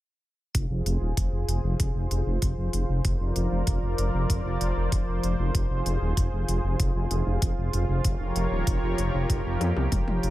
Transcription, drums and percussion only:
0.55 kick, closed hi-hat
0.86 closed hi-hat
1.17 kick, closed hi-hat
1.49 closed hi-hat
1.80 kick, closed hi-hat
2.11 closed hi-hat
2.42 kick, closed hi-hat
2.73 closed hi-hat
3.05 kick, closed hi-hat
3.36 closed hi-hat
3.67 kick, closed hi-hat
3.98 closed hi-hat
4.30 kick, closed hi-hat
4.61 closed hi-hat
4.92 kick, closed hi-hat
5.24 closed hi-hat
5.55 kick, closed hi-hat
5.86 closed hi-hat
6.17 kick, closed hi-hat
6.49 closed hi-hat
6.80 kick, closed hi-hat
7.11 closed hi-hat
7.42 kick, closed hi-hat
7.73 closed hi-hat
8.05 kick, closed hi-hat
8.36 closed hi-hat
8.67 kick, closed hi-hat
8.98 closed hi-hat
9.30 kick, closed hi-hat
9.61 closed hi-hat, high tom
9.77 high tom
9.92 kick, closed hi-hat, mid tom
10.08 mid tom
10.23 closed hi-hat

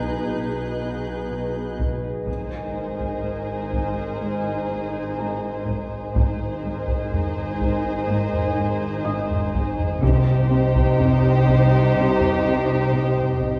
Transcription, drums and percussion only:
1.79 taiko
2.27 taiko
3.00 taiko
3.73 taiko
5.67 taiko
6.16 taiko
6.88 taiko
7.13 taiko low
7.61 taiko
8.33 taiko low
9.30 taiko low
9.54 taiko
9.79 taiko low
10.04 taiko
10.76 taiko
11.00 taiko low
11.48 taiko
12.21 taiko low
13.18 taiko low
13.41 taiko

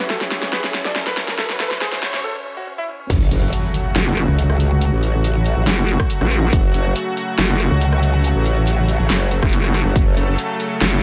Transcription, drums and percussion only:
0.10 snare
0.21 snare
0.31 snare, closed hi-hat
0.43 snare, closed hi-hat
0.53 snare
0.64 snare
0.74 snare, closed hi-hat
0.85 snare
0.96 snare
1.07 snare
1.17 snare, closed hi-hat
1.28 snare
1.39 snare
1.50 snare
1.60 snare, closed hi-hat
1.71 snare
1.81 snare
1.92 snare
2.03 snare, closed hi-hat
2.14 snare, closed hi-hat
3.10 kick, closed hi-hat, crash
3.31 closed hi-hat
3.53 closed hi-hat
3.74 closed hi-hat
3.96 snare, closed hi-hat
4.17 cross-stick, closed hi-hat
4.39 closed hi-hat
4.50 cross-stick
4.60 closed hi-hat
4.81 closed hi-hat
5.03 closed hi-hat
5.24 closed hi-hat
5.46 closed hi-hat
5.67 snare, closed hi-hat
5.89 closed hi-hat
6.00 kick, cross-stick
6.10 closed hi-hat
6.21 cross-stick
6.31 cross-stick, closed hi-hat
6.53 kick, closed hi-hat
6.74 closed hi-hat
6.96 closed hi-hat
7.17 closed hi-hat
7.39 snare, closed hi-hat
7.60 cross-stick, closed hi-hat
7.81 closed hi-hat
7.93 cross-stick
8.03 closed hi-hat
8.24 closed hi-hat
8.46 closed hi-hat
8.67 closed hi-hat
8.89 closed hi-hat
9.10 snare, closed hi-hat
9.31 closed hi-hat
9.43 kick, cross-stick
9.53 closed hi-hat
9.64 cross-stick
9.74 cross-stick, closed hi-hat
9.96 kick, closed hi-hat
10.17 closed hi-hat
10.39 closed hi-hat
10.60 closed hi-hat
10.81 snare, closed hi-hat

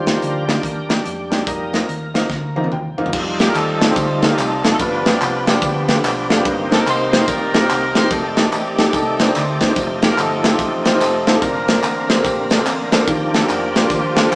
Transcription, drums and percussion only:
0.07 snare, closed hi-hat
0.22 closed hi-hat
0.49 snare, closed hi-hat
0.63 kick, closed hi-hat
0.90 snare, closed hi-hat
1.06 closed hi-hat
1.32 snare, closed hi-hat
1.47 kick, closed hi-hat
1.73 snare, closed hi-hat
1.89 closed hi-hat
2.15 snare, closed hi-hat
2.30 kick, snare
2.56 high tom
2.64 high tom
2.72 mid tom
2.98 floor tom
3.06 floor tom
3.13 kick, crash, tambourine
3.39 snare, ride, tambourine
3.55 clap, ride, tambourine
3.81 snare, ride, tambourine
3.96 kick, ride, tambourine
4.22 snare, ride, tambourine
4.38 clap, ride, tambourine
4.64 snare, ride, tambourine
4.79 kick, ride, tambourine
5.06 snare, ride, tambourine
5.21 clap, ride, tambourine
5.47 snare, ride, tambourine
5.62 kick, ride, tambourine
5.88 snare, ride, tambourine
6.04 clap, ride, tambourine
6.30 snare, ride, tambourine
6.45 kick, ride, tambourine
6.72 snare, ride, tambourine
6.87 clap, ride, tambourine
7.13 snare, ride, tambourine
7.28 kick, ride, tambourine
7.54 snare, ride, tambourine
7.70 clap, ride, tambourine
7.95 snare, ride, tambourine
8.11 kick, ride, tambourine
8.37 snare, ride, tambourine
8.52 clap, ride, tambourine
8.79 snare, ride, tambourine
8.93 kick, ride, tambourine
9.19 snare, ride, tambourine
9.35 clap, ride, tambourine
9.61 kick, snare, ride, tambourine
9.76 kick, ride, tambourine
10.02 snare, ride, tambourine
10.18 clap, ride, tambourine
10.44 snare, ride, tambourine
10.59 kick, ride, tambourine
10.85 snare, ride, tambourine
11.01 clap, ride, tambourine
11.27 snare, ride, tambourine
11.42 kick, ride, tambourine
11.68 snare, ride, tambourine
11.84 clap, ride, tambourine
12.10 snare, ride, tambourine
12.25 kick, ride, tambourine
12.50 snare, ride, tambourine
12.66 clap, ride, tambourine
12.92 snare, ride, tambourine
13.07 kick, ride, tambourine
13.34 snare, ride, tambourine
13.49 clap, ride, tambourine
13.75 snare, ride, tambourine
13.90 kick, ride, tambourine
14.16 snare, ride, tambourine
14.32 ride

